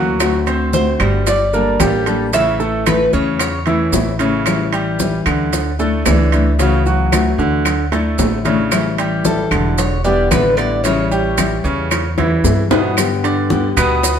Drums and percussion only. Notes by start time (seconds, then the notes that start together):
0.20 high bongo, high timbale, claves, maracas
0.47 high conga, high timbale, maracas
0.73 high bongo, high conga, low timbale, maracas
1.00 high timbale, claves, maracas
1.27 high bongo, high conga, high timbale, maracas
1.53 high conga, maracas
1.80 high bongo, low bongo, high conga, high timbale, low timbale, claves, maracas
2.06 high timbale, maracas
2.33 high bongo, high conga, high timbale, maracas
2.60 high bongo, high conga, maracas
2.86 high bongo, high conga, high timbale, low timbale, claves, maracas
3.13 high conga, maracas
3.39 high bongo, high conga, high timbale, claves, maracas
3.66 high bongo, high conga, high timbale, maracas
3.92 high bongo, low bongo, high conga, low timbale, maracas
4.19 high bongo, high timbale, maracas
4.46 high bongo, high conga, high timbale, claves, maracas
4.73 high conga, high timbale, maracas
4.99 high bongo, high conga, low timbale, maracas
5.26 high timbale, claves, maracas
5.53 high bongo, high conga, high timbale, maracas
5.79 high conga, maracas
6.06 high bongo, low bongo, high conga, high timbale, low timbale, claves, maracas
6.32 high timbale, maracas
6.59 high bongo, high conga, high timbale, maracas
6.86 high bongo, high conga, maracas
7.12 high bongo, high conga, high timbale, low timbale, claves, maracas
7.39 high conga, maracas
7.65 high bongo, high conga, high timbale, claves, maracas
7.92 high bongo, high conga, high timbale, maracas
8.18 high bongo, low bongo, high conga, low timbale, maracas
8.45 high bongo, high conga, high timbale, maracas
8.72 high bongo, high conga, high timbale, claves, maracas
8.98 high conga, high timbale, maracas
9.25 high bongo, high conga, low timbale, maracas
9.51 high timbale, claves, maracas
9.78 high bongo, high conga, high timbale, maracas
10.05 high conga, maracas
10.31 high bongo, low bongo, high conga, high timbale, low timbale, claves, maracas
10.58 high timbale, maracas
10.85 high bongo, high conga, high timbale, maracas
11.12 high bongo, high conga, maracas
11.38 high bongo, high conga, high timbale, low timbale, claves, maracas
11.65 high conga, maracas
11.91 high bongo, high conga, high timbale, claves, maracas
12.18 high bongo, high conga, high timbale, maracas
12.44 low bongo, low timbale, maracas
12.71 low bongo, low conga, high timbale, maracas
12.97 high bongo, high conga, high timbale, claves, maracas
13.24 high bongo, high conga, high timbale, maracas
13.50 high bongo, high conga, maracas
13.77 high conga, low conga, high timbale, claves, maracas
14.03 high bongo, high conga, high timbale, maracas